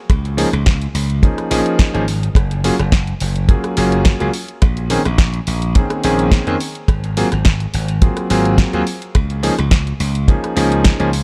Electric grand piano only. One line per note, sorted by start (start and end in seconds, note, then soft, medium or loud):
0.37 0.47 F3 medium
0.37 0.47 A#3 medium
0.37 0.47 C#4 medium
0.37 0.47 D#4 medium
0.37 0.47 G#4 loud
1.23 1.48 F3 medium
1.23 1.48 A#3 medium
1.23 1.48 C#4 medium
1.23 1.48 D#4 medium
1.23 1.48 G#4 medium
1.50 1.90 F3 medium
1.50 1.90 A#3 medium
1.50 1.91 C#4 medium
1.50 1.91 D#4 medium
1.50 1.91 G#4 loud
1.94 2.02 F3 loud
1.94 2.02 A#3 medium
1.94 2.02 C#4 medium
1.94 2.03 D#4 medium
1.94 2.03 G#4 loud
2.64 2.73 F#3 medium
2.64 2.74 A#3 medium
2.64 2.74 C#4 medium
2.64 2.74 F4 medium
2.64 2.74 G#4 loud
3.48 3.74 F#3 medium
3.48 3.74 A#3 medium
3.48 3.74 C#4 medium
3.48 3.74 F4 medium
3.48 3.74 G#4 medium
3.77 4.17 F#3 medium
3.77 4.17 A#3 medium
3.77 4.17 C#4 medium
3.77 4.17 F4 medium
3.77 4.17 G#4 loud
4.20 4.29 F#3 loud
4.20 4.29 A#3 medium
4.20 4.29 C#4 medium
4.20 4.29 F4 medium
4.20 4.29 G#4 loud
4.90 5.00 D#3 medium
4.90 5.00 A#3 medium
4.90 5.00 C4 medium
4.90 5.00 C#4 medium
4.90 5.00 G#4 loud
5.75 6.00 D#3 medium
5.75 6.00 A#3 medium
5.75 6.01 C4 medium
5.75 6.01 C#4 medium
5.75 6.01 G#4 medium
6.04 6.43 D#3 loud
6.04 6.44 A#3 medium
6.04 6.44 C4 medium
6.04 6.44 C#4 medium
6.04 6.44 G#4 loud
6.47 6.55 D#3 loud
6.47 6.55 A#3 medium
6.47 6.56 C4 medium
6.47 6.56 C#4 medium
6.47 6.56 G#4 loud
7.17 7.26 F#3 medium
7.17 7.26 A#3 medium
7.17 7.27 C4 medium
7.17 7.27 F4 medium
7.17 7.27 G#4 loud
8.02 8.27 F#3 medium
8.02 8.27 A#3 medium
8.02 8.27 C4 medium
8.02 8.27 F4 medium
8.02 8.27 G#4 medium
8.30 8.70 F#3 medium
8.30 8.70 A#3 medium
8.30 8.70 C4 medium
8.30 8.70 F4 medium
8.30 8.70 G#4 loud
8.73 8.82 F#3 loud
8.73 8.82 A#3 medium
8.73 8.82 C4 medium
8.73 8.82 F4 medium
8.73 8.82 G#4 loud
9.43 9.52 F3 medium
9.43 9.53 A#3 medium
9.43 9.53 C#4 medium
9.43 9.53 D#4 medium
9.43 9.53 G#4 loud
10.28 10.53 F3 medium
10.28 10.53 A#3 medium
10.28 10.53 C#4 medium
10.28 10.54 D#4 medium
10.28 10.54 G#4 medium
10.56 10.96 F3 medium
10.56 10.96 A#3 medium
10.56 10.96 C#4 medium
10.56 10.96 D#4 medium
10.56 10.96 G#4 loud
10.99 11.08 F3 loud
10.99 11.08 A#3 medium
10.99 11.08 C#4 medium
10.99 11.08 D#4 medium
10.99 11.08 G#4 loud